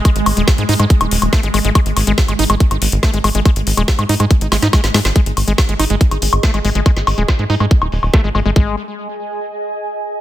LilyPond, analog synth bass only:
\new Staff \with { instrumentName = "Analog synth bass" } { \clef bass \time 4/4 \tempo 4 = 141 r16 aes,,16 aes,,16 ees,,16 r16 aes,16 aes,16 aes,16 r16 ees,,16 ees,,16 ees,,16 r16 aes,,16 aes,,16 aes,,16 | r16 aes,,16 aes,,16 aes,,16 r16 aes,,16 aes,,16 aes,,16 r16 aes,,16 aes,,16 aes,,16 r16 aes,,16 aes,,16 aes,,16 | r16 aes,,16 aes,,16 ees,,16 r16 aes,16 aes,16 aes,16 r16 aes,,16 aes,,16 aes,16 r16 aes,,16 aes,16 aes,,16 | r16 aes,,16 aes,,16 aes,,16 r16 aes,,16 aes,,16 aes,,16 r16 aes,,16 aes,,16 aes,,16 r16 aes,,16 aes,,16 aes,,16 |
r16 aes,,16 aes,,16 ees,,16 r16 aes,16 aes,16 aes,16 r16 ees,,16 ees,,16 ees,,16 r16 aes,,16 aes,,16 aes,,16 | aes,,8 r2. r8 | }